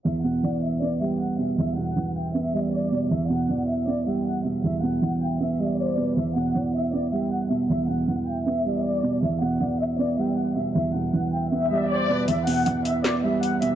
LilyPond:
<<
  \new Staff \with { instrumentName = "Soft synth lead" } { \time 4/4 \key e \minor \tempo 4 = 157 r4 d''8 e''4 g''8 r4 | r4 fis''8 e''4 d''8 r4 | r4 d''8 e''4 g''8 r4 | r4 fis''8 e''4 d''8 c''8 b'8 |
r4 d''8 e''4 g''8 r4 | r4 fis''8 e''4 d''8 r4 | r4 d''8 e''4 g''8 r4 | r4 fis''8 e''4 d''8 c''8 b'8 |
r1 | }
  \new Staff \with { instrumentName = "Violin section" } { \time 4/4 \key e \minor e''8 fis''4 e''8 d''8 e''8 fis''8 e''8 | e''8 fis''4 g''8 e''4 d''4 | e''8 fis''4 e''8 d''8 e''8 fis''8 e''8 | e''8 fis''4 g''8 e''4 d''4 |
e''8 fis''4 e''8 d''8 e''8 fis''8 e''8 | e''8 fis''4 g''8 e''4 d''4 | e''8 fis''4 e''8 d''8 e''8 fis''8 e''8 | e''8 fis''4 g''8 e''4 d''4 |
e''8 fis''4 e''8 d''8 e''8 fis''8 e''8 | }
  \new Staff \with { instrumentName = "Felt piano" } { \clef bass \time 4/4 \key e \minor e,8 b,8 e4 b8 g4 b,8 | e,8 b,8 e4 b8 g4 b,8 | e,8 b,8 e4 b8 g4 b,8 | e,8 b,8 e4 b8 g4 b,8 |
e,8 b,8 e4 b8 g4 b,8 | e,8 b,8 e4 b8 g4 b,8 | e,8 b,8 e4 b8 g4 b,8 | e,8 b,8 e4 b8 g4 b,8 |
e,8 b,8 e4 b8 g4 b,8 | }
  \new DrumStaff \with { instrumentName = "Drums" } \drummode { \time 4/4 r4 r4 r4 r4 | r4 r4 r4 r4 | r4 r4 r4 r4 | r4 r4 r4 r4 |
r4 r4 r4 r4 | r4 r4 r4 r4 | r4 r4 r4 r4 | r4 r4 r4 r4 |
hh8 hho8 hh8 hh8 <hc hh sn>4 hh8 hh8 | }
>>